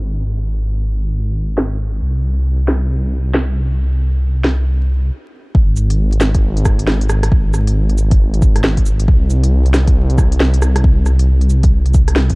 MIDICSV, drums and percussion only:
0, 0, Header, 1, 2, 480
1, 0, Start_track
1, 0, Tempo, 441176
1, 276, Time_signature, 4, 2, 24, 8
1, 13438, End_track
2, 0, Start_track
2, 0, Title_t, "Drums"
2, 1715, Note_on_c, 9, 38, 99
2, 1824, Note_off_c, 9, 38, 0
2, 2917, Note_on_c, 9, 38, 99
2, 3026, Note_off_c, 9, 38, 0
2, 3637, Note_on_c, 9, 38, 102
2, 3746, Note_off_c, 9, 38, 0
2, 4834, Note_on_c, 9, 38, 97
2, 4943, Note_off_c, 9, 38, 0
2, 6036, Note_on_c, 9, 36, 121
2, 6145, Note_off_c, 9, 36, 0
2, 6272, Note_on_c, 9, 69, 75
2, 6381, Note_off_c, 9, 69, 0
2, 6422, Note_on_c, 9, 42, 60
2, 6531, Note_off_c, 9, 42, 0
2, 6665, Note_on_c, 9, 42, 33
2, 6754, Note_on_c, 9, 38, 108
2, 6754, Note_on_c, 9, 69, 71
2, 6773, Note_off_c, 9, 42, 0
2, 6863, Note_off_c, 9, 38, 0
2, 6863, Note_off_c, 9, 69, 0
2, 6904, Note_on_c, 9, 42, 61
2, 6905, Note_on_c, 9, 36, 106
2, 7013, Note_off_c, 9, 42, 0
2, 7014, Note_off_c, 9, 36, 0
2, 7146, Note_on_c, 9, 42, 35
2, 7238, Note_on_c, 9, 36, 102
2, 7239, Note_on_c, 9, 37, 66
2, 7239, Note_on_c, 9, 69, 74
2, 7255, Note_off_c, 9, 42, 0
2, 7347, Note_off_c, 9, 36, 0
2, 7348, Note_off_c, 9, 37, 0
2, 7348, Note_off_c, 9, 69, 0
2, 7389, Note_on_c, 9, 42, 57
2, 7479, Note_on_c, 9, 38, 107
2, 7498, Note_off_c, 9, 42, 0
2, 7588, Note_off_c, 9, 38, 0
2, 7630, Note_on_c, 9, 42, 49
2, 7719, Note_on_c, 9, 37, 71
2, 7719, Note_on_c, 9, 69, 77
2, 7738, Note_off_c, 9, 42, 0
2, 7828, Note_off_c, 9, 37, 0
2, 7828, Note_off_c, 9, 69, 0
2, 7868, Note_on_c, 9, 37, 70
2, 7868, Note_on_c, 9, 42, 61
2, 7961, Note_on_c, 9, 36, 121
2, 7977, Note_off_c, 9, 37, 0
2, 7977, Note_off_c, 9, 42, 0
2, 8070, Note_off_c, 9, 36, 0
2, 8201, Note_on_c, 9, 37, 38
2, 8201, Note_on_c, 9, 69, 71
2, 8310, Note_off_c, 9, 37, 0
2, 8310, Note_off_c, 9, 69, 0
2, 8349, Note_on_c, 9, 42, 59
2, 8458, Note_off_c, 9, 42, 0
2, 8590, Note_on_c, 9, 42, 33
2, 8681, Note_on_c, 9, 69, 71
2, 8699, Note_off_c, 9, 42, 0
2, 8790, Note_off_c, 9, 69, 0
2, 8827, Note_on_c, 9, 42, 60
2, 8829, Note_on_c, 9, 36, 111
2, 8935, Note_off_c, 9, 42, 0
2, 8938, Note_off_c, 9, 36, 0
2, 9071, Note_on_c, 9, 42, 35
2, 9161, Note_on_c, 9, 36, 110
2, 9163, Note_on_c, 9, 69, 71
2, 9180, Note_off_c, 9, 42, 0
2, 9270, Note_off_c, 9, 36, 0
2, 9272, Note_off_c, 9, 69, 0
2, 9309, Note_on_c, 9, 37, 53
2, 9309, Note_on_c, 9, 42, 58
2, 9399, Note_on_c, 9, 38, 118
2, 9418, Note_off_c, 9, 37, 0
2, 9418, Note_off_c, 9, 42, 0
2, 9507, Note_off_c, 9, 38, 0
2, 9544, Note_on_c, 9, 42, 51
2, 9548, Note_on_c, 9, 36, 61
2, 9638, Note_on_c, 9, 69, 74
2, 9653, Note_off_c, 9, 42, 0
2, 9656, Note_off_c, 9, 36, 0
2, 9747, Note_off_c, 9, 69, 0
2, 9788, Note_on_c, 9, 42, 60
2, 9880, Note_on_c, 9, 36, 125
2, 9896, Note_off_c, 9, 42, 0
2, 9989, Note_off_c, 9, 36, 0
2, 10121, Note_on_c, 9, 69, 69
2, 10229, Note_off_c, 9, 69, 0
2, 10266, Note_on_c, 9, 42, 60
2, 10375, Note_off_c, 9, 42, 0
2, 10508, Note_on_c, 9, 42, 32
2, 10597, Note_on_c, 9, 38, 111
2, 10597, Note_on_c, 9, 69, 68
2, 10616, Note_off_c, 9, 42, 0
2, 10706, Note_off_c, 9, 38, 0
2, 10706, Note_off_c, 9, 69, 0
2, 10744, Note_on_c, 9, 42, 60
2, 10745, Note_on_c, 9, 36, 115
2, 10853, Note_off_c, 9, 36, 0
2, 10853, Note_off_c, 9, 42, 0
2, 10987, Note_on_c, 9, 42, 34
2, 11076, Note_on_c, 9, 36, 112
2, 11078, Note_on_c, 9, 37, 57
2, 11078, Note_on_c, 9, 69, 70
2, 11096, Note_off_c, 9, 42, 0
2, 11185, Note_off_c, 9, 36, 0
2, 11187, Note_off_c, 9, 37, 0
2, 11187, Note_off_c, 9, 69, 0
2, 11229, Note_on_c, 9, 42, 58
2, 11318, Note_on_c, 9, 38, 114
2, 11337, Note_off_c, 9, 42, 0
2, 11427, Note_off_c, 9, 38, 0
2, 11464, Note_on_c, 9, 42, 51
2, 11555, Note_on_c, 9, 37, 64
2, 11555, Note_on_c, 9, 69, 73
2, 11573, Note_off_c, 9, 42, 0
2, 11664, Note_off_c, 9, 37, 0
2, 11664, Note_off_c, 9, 69, 0
2, 11704, Note_on_c, 9, 37, 66
2, 11704, Note_on_c, 9, 42, 59
2, 11795, Note_on_c, 9, 36, 127
2, 11812, Note_off_c, 9, 37, 0
2, 11812, Note_off_c, 9, 42, 0
2, 11904, Note_off_c, 9, 36, 0
2, 12034, Note_on_c, 9, 37, 36
2, 12034, Note_on_c, 9, 69, 73
2, 12143, Note_off_c, 9, 37, 0
2, 12143, Note_off_c, 9, 69, 0
2, 12178, Note_on_c, 9, 42, 58
2, 12287, Note_off_c, 9, 42, 0
2, 12417, Note_on_c, 9, 42, 31
2, 12510, Note_on_c, 9, 69, 68
2, 12526, Note_off_c, 9, 42, 0
2, 12619, Note_off_c, 9, 69, 0
2, 12656, Note_on_c, 9, 42, 57
2, 12662, Note_on_c, 9, 36, 107
2, 12765, Note_off_c, 9, 42, 0
2, 12770, Note_off_c, 9, 36, 0
2, 12899, Note_on_c, 9, 42, 33
2, 12990, Note_on_c, 9, 69, 69
2, 12995, Note_on_c, 9, 36, 108
2, 13008, Note_off_c, 9, 42, 0
2, 13099, Note_off_c, 9, 69, 0
2, 13104, Note_off_c, 9, 36, 0
2, 13140, Note_on_c, 9, 37, 52
2, 13140, Note_on_c, 9, 42, 57
2, 13227, Note_on_c, 9, 38, 114
2, 13249, Note_off_c, 9, 37, 0
2, 13249, Note_off_c, 9, 42, 0
2, 13336, Note_off_c, 9, 38, 0
2, 13378, Note_on_c, 9, 42, 46
2, 13384, Note_on_c, 9, 36, 65
2, 13438, Note_off_c, 9, 36, 0
2, 13438, Note_off_c, 9, 42, 0
2, 13438, End_track
0, 0, End_of_file